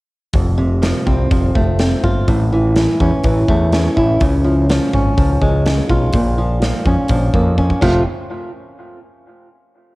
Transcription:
0.33 picked electric bass F1, steel-string acoustic guitar F2, kick, open hi-hat
0.58 steel-string acoustic guitar C3
0.82 steel-string acoustic guitar F3, snare, open hi-hat
1.06 picked electric bass C2, steel-string acoustic guitar C4, kick
1.31 picked electric bass F1, steel-string acoustic guitar F3, kick, open hi-hat
1.55 picked electric bass F1, steel-string acoustic guitar A3, kick
1.79 steel-string acoustic guitar C4, snare, open hi-hat
2.03 picked electric bass G1, steel-string acoustic guitar F4, kick
2.28 picked electric bass A1, steel-string acoustic guitar A2, kick, open hi-hat
2.52 steel-string acoustic guitar E3
2.76 steel-string acoustic guitar E3, snare, open hi-hat
3.00 picked electric bass E2, steel-string acoustic guitar C#4, kick
3.23 picked electric bass A1, steel-string acoustic guitar E3, kick, open hi-hat
3.48 picked electric bass E2, steel-string acoustic guitar A3, kick
3.72 steel-string acoustic guitar C#4, snare, open hi-hat
3.97 picked electric bass A1, steel-string acoustic guitar E4, kick
4.21 picked electric bass C#2, steel-string acoustic guitar C#3, kick, open hi-hat
4.44 steel-string acoustic guitar F3
4.69 steel-string acoustic guitar F3, snare, open hi-hat
4.93 picked electric bass G#1, steel-string acoustic guitar C#4, kick
5.17 picked electric bass C#2, steel-string acoustic guitar F3, kick, open hi-hat
5.41 picked electric bass C#2, steel-string acoustic guitar G#3, kick
5.66 steel-string acoustic guitar C#4, snare, open hi-hat
5.90 picked electric bass B1, steel-string acoustic guitar F4, kick
6.13 picked electric bass A#1, steel-string acoustic guitar A#2, kick, open hi-hat
6.38 steel-string acoustic guitar F3
6.62 steel-string acoustic guitar F3, snare, open hi-hat
6.86 picked electric bass F2, steel-string acoustic guitar C#4, kick
7.08 picked electric bass A#1, steel-string acoustic guitar F3, kick, open hi-hat
7.34 picked electric bass F2, steel-string acoustic guitar A#3, kick
7.58 steel-string acoustic guitar C#4, kick
7.70 kick
7.81 picked electric bass F1, steel-string acoustic guitar F2 C3 F3 A3 C4 F4, kick, crash

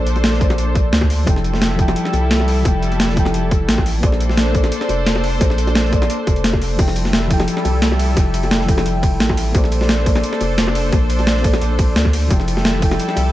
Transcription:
Already playing: sub bass A#1, fm electric piano A#3 A4 C5 D5, analog synth pad D4 A4 C5
0.07 closed hi-hat
0.16 closed hi-hat, high bongo
0.24 snare, closed hi-hat
0.33 snare
0.38 fm electric piano A#3 A4 C5, kick, closed hi-hat
0.44 fm electric piano D5
0.50 snare, closed hi-hat, high bongo
0.58 sub bass A#1, closed hi-hat
0.75 kick, closed hi-hat, high bongo
0.93 sub bass D2, snare, closed hi-hat
1.01 kick, high bongo
1.10 open hi-hat
1.24 sub bass F1, fm electric piano F3 E4 A4, analog synth pad G3 E4 A4, kick, closed hi-hat, high bongo
1.30 fm electric piano G5
1.36 snare
1.44 closed hi-hat
1.53 snare, high bongo
1.62 snare, closed hi-hat
1.76 fm electric piano F3 E4 A4, kick, closed hi-hat
1.82 fm electric piano G5
1.88 snare, closed hi-hat, high bongo
1.96 closed hi-hat
2.05 snare
2.13 sub bass C2, closed hi-hat, high bongo
2.31 snare, closed hi-hat
2.40 high bongo
2.48 open hi-hat
2.62 sub bass F1, fm electric piano F3 E4 A4, kick, closed hi-hat, high bongo
2.68 fm electric piano G5
2.83 closed hi-hat
2.92 closed hi-hat, high bongo
3.00 snare, closed hi-hat
3.09 snare
3.14 fm electric piano F3 E4 A4, kick, closed hi-hat
3.20 fm electric piano G5
3.25 snare, closed hi-hat, high bongo
3.34 sub bass F1, closed hi-hat
3.51 kick, closed hi-hat, high bongo
3.69 sub bass A1, snare, closed hi-hat
3.78 kick, high bongo
3.86 open hi-hat
4.00 sub bass A#1, fm electric piano A#3 A4 C5, analog synth pad D4 A4 C5, kick, closed hi-hat, high bongo
4.06 fm electric piano D5
4.12 snare
4.20 closed hi-hat
4.29 snare, high bongo
4.37 snare, closed hi-hat
4.52 fm electric piano A#3 A4 C5, kick, closed hi-hat
4.58 fm electric piano D5
4.64 snare, closed hi-hat, high bongo
4.72 closed hi-hat
4.81 snare
4.89 sub bass F1, closed hi-hat, high bongo
5.07 snare, closed hi-hat
5.16 high bongo
5.24 open hi-hat
5.38 sub bass A#1, fm electric piano A#3 A4 C5, kick, closed hi-hat, high bongo
5.44 fm electric piano D5
5.50 snare
5.58 closed hi-hat
5.67 closed hi-hat, high bongo
5.75 snare, closed hi-hat
5.85 snare
5.90 fm electric piano A#3 A4 C5, kick, closed hi-hat
5.96 fm electric piano D5
6.02 snare, closed hi-hat, high bongo
6.10 closed hi-hat
6.27 sub bass F1, kick, closed hi-hat, high bongo
6.36 closed hi-hat
6.44 snare, closed hi-hat
6.53 kick, high bongo
6.62 open hi-hat
6.76 sub bass F1, fm electric piano F3 E4 A4, analog synth pad G3 E4 A4, kick, closed hi-hat, crash, high bongo
6.82 fm electric piano G5
6.88 snare
6.96 closed hi-hat, ride
7.05 snare, high bongo
7.13 snare, closed hi-hat
7.28 fm electric piano F3 E4 A4, kick, closed hi-hat, ride
7.33 fm electric piano G5
7.40 snare, closed hi-hat, high bongo
7.48 closed hi-hat
7.57 snare
7.65 sub bass C2, closed hi-hat, ride, high bongo
7.82 snare, closed hi-hat
7.92 high bongo
7.99 open hi-hat, ride
8.14 sub bass F1, fm electric piano F3 E4 A4, kick, closed hi-hat, high bongo
8.20 fm electric piano G5
8.34 closed hi-hat, ride
8.43 closed hi-hat, high bongo
8.51 snare, closed hi-hat
8.61 snare
8.66 fm electric piano F3 E4 A4, kick, closed hi-hat, ride
8.71 fm electric piano G5
8.78 snare, closed hi-hat, high bongo
8.86 sub bass F1, closed hi-hat
9.03 kick, closed hi-hat, ride, high bongo
9.20 sub bass A1, snare, closed hi-hat
9.29 kick, high bongo
9.37 open hi-hat, ride
9.52 sub bass A#1, fm electric piano A#3 A4 C5, analog synth pad D4 A4 C5, kick, closed hi-hat, high bongo
9.57 fm electric piano D5
9.64 snare
9.72 closed hi-hat, ride
9.81 snare, high bongo
9.89 snare, closed hi-hat
10.03 fm electric piano A#3 A4 C5, kick, closed hi-hat, ride
10.09 fm electric piano D5
10.15 snare, closed hi-hat, high bongo
10.24 closed hi-hat
10.33 snare
10.41 sub bass F1, closed hi-hat, ride, high bongo
10.58 snare, closed hi-hat
10.67 high bongo
10.75 open hi-hat, ride
10.90 sub bass A#1, fm electric piano A#3 A4 C5, kick, closed hi-hat, high bongo
10.95 fm electric piano D5
11.10 closed hi-hat, ride
11.19 closed hi-hat, high bongo
11.27 snare, closed hi-hat
11.36 snare
11.41 fm electric piano A#3 A4 C5, kick, closed hi-hat, ride
11.47 fm electric piano D5
11.53 snare, closed hi-hat, high bongo
11.62 sub bass A#1, closed hi-hat
11.79 kick, closed hi-hat, ride, high bongo
11.96 sub bass D2, snare, closed hi-hat
12.05 kick, high bongo
12.13 open hi-hat, ride
12.28 sub bass F1, fm electric piano F3 E4 A4, analog synth pad G3 E4 A4, kick, closed hi-hat, high bongo
12.33 fm electric piano G5
12.40 snare
12.48 closed hi-hat, ride
12.57 snare, high bongo
12.65 snare, closed hi-hat
12.80 fm electric piano F3 E4 A4, kick, closed hi-hat, ride
12.85 fm electric piano G5
12.91 snare, closed hi-hat, high bongo
13.00 closed hi-hat
13.09 snare
13.16 sub bass C2, closed hi-hat, ride, high bongo

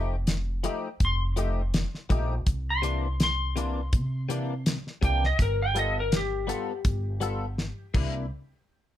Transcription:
Already playing: upright bass F1, clean electric guitar F3 A3 D#4 G4
0.27 snare, closed hi-hat
0.64 clean electric guitar F3 A3 D#4 G4, closed hi-hat
1.00 upright bass F1, kick, closed hi-hat
1.05 electric slide guitar C6
1.36 clean electric guitar F3 A3 D#4 G4, closed hi-hat
1.74 snare, closed hi-hat
1.95 snare
2.10 upright bass A#1, clean electric guitar F3 A3 D#4 G4, kick, closed hi-hat
2.46 upright bass C2, kick, closed hi-hat
2.70 electric slide guitar C6
2.82 clean electric guitar C3 E3 A#3 D4, closed hi-hat
3.20 electric slide guitar C6, snare, closed hi-hat
3.56 clean electric guitar C3 E3 A#3 D4, closed hi-hat
3.93 upright bass C3, kick, closed hi-hat
4.29 clean electric guitar C3 E3 A#3 D4, closed hi-hat
4.66 snare, closed hi-hat
4.87 snare
5.01 upright bass C2, clean electric guitar C3 E3 A#3 D4, electric slide guitar G5, kick, closed hi-hat
5.24 electric slide guitar D#5, snare
5.39 upright bass G1, electric slide guitar A#4, kick, closed hi-hat
5.62 electric slide guitar G5
5.75 clean electric guitar G3 B3 F4 A4, closed hi-hat
5.79 electric slide guitar D#5
6.00 electric slide guitar A#4
6.12 snare, closed hi-hat
6.17 electric slide guitar G4
6.47 clean electric guitar G3 B3 F4 A4, closed hi-hat
6.85 upright bass G1, kick, closed hi-hat
7.20 clean electric guitar G3 B3 F4 A4, closed hi-hat
7.58 snare
7.94 upright bass C2, clean electric guitar C3 A#3 D4 E4, kick, crash

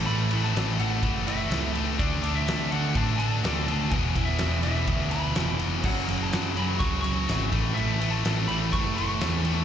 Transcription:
Already playing: tonewheel organ A3 E4 B4
0.06 picked electric bass A1, distorted electric guitar A2 E3 A3, lead electric guitar B5
0.29 distorted electric guitar A2 E3 A3, ride
0.44 lead electric guitar A5, snare
0.54 picked electric bass A1, distorted electric guitar A2 E3 A3, snare, ride
0.78 picked electric bass A1, distorted electric guitar A2 E3 A3, lead electric guitar F#5, ride
1.03 picked electric bass F#1, distorted electric guitar A2 E3 A3, kick, ride
1.27 distorted electric guitar A2 E3 A3, lead electric guitar E5, ride
1.49 picked electric bass C#2, distorted electric guitar A2 E3 A3, snare, ride
1.74 distorted electric guitar A2 E3 A3, ride
1.97 picked electric bass D2, distorted electric guitar D3 A3 D4, tonewheel organ D4 A4 E5, lead electric guitar D5, kick, ride
2.21 picked electric bass D2, distorted electric guitar D3 A3 D4, ride
2.35 lead electric guitar E5
2.47 distorted electric guitar D3 A3 D4, picked electric bass D3, snare, ride
2.71 distorted electric guitar D3 A3 D4, lead electric guitar F#5, ride
2.95 picked electric bass A2, distorted electric guitar D3 A3 D4, lead electric guitar A5, kick, ride
3.18 distorted electric guitar D3 A3 D4, lead electric guitar A5, ride
3.43 picked electric bass D2, distorted electric guitar D3 A3 D4, snare, ride
3.67 picked electric bass D2, distorted electric guitar D3 A3 D4, lead electric guitar G#5, ride
3.90 picked electric bass E1, distorted electric guitar E2 B2 E3, tonewheel organ E3 B3 F#4, lead electric guitar G#5, kick, ride
4.16 distorted electric guitar E2 B2 E3, kick, ride
4.25 lead electric guitar E5, snare
4.38 picked electric bass E1, distorted electric guitar E2 B2 E3, snare, ride
4.63 picked electric bass E1, distorted electric guitar E2 B2 E3, lead electric guitar E5, ride
4.87 picked electric bass D2, distorted electric guitar E2 B2 E3, kick, ride
5.11 distorted electric guitar E2 B2 E3, lead electric guitar B5, ride
5.35 picked electric bass F1, distorted electric guitar E2 B2 E3, snare, ride
5.59 distorted electric guitar E2 B2 E3, ride
5.80 tonewheel organ F#3 G#3 C#4, kick, crash
5.84 picked electric bass F#1, distorted electric guitar F#2 C#3 F#3, lead electric guitar F#5
6.08 picked electric bass F#1, distorted electric guitar F#2 C#3 F#3, ride
6.23 lead electric guitar A5
6.33 picked electric bass F#2, distorted electric guitar F#2 C#3 F#3, snare, ride
6.56 distorted electric guitar F#2 C#3 F#3, lead electric guitar B5, ride
6.79 picked electric bass C#2, distorted electric guitar F#2 C#3 F#3, lead electric guitar C#6, kick, ride
7.01 distorted electric guitar F#2 C#3, lead electric guitar C#6, ride
7.06 distorted electric guitar F#3
7.28 picked electric bass G#1, distorted electric guitar F#2 C#3 F#3, snare, ride
7.51 picked electric bass A1, distorted electric guitar A2 E3 A3, tonewheel organ A3 E4 B4, kick, ride
7.74 picked electric bass A1, distorted electric guitar A2 E3 A3, lead electric guitar E5, ride
8.00 distorted electric guitar A2 E3 A3, ride
8.11 lead electric guitar A5
8.25 picked electric bass A1, distorted electric guitar A2 E3 A3, snare, ride
8.48 picked electric bass A1, distorted electric guitar A2 E3 A3, lead electric guitar B5, ride
8.73 picked electric bass F#1, distorted electric guitar A2 E3 A3, lead electric guitar C#6, kick, ride
8.96 distorted electric guitar A2 E3 A3, lead electric guitar C#6, ride
9.21 picked electric bass E2, distorted electric guitar A2 E3 A3, snare, ride
9.44 distorted electric guitar A2 E3 A3, ride

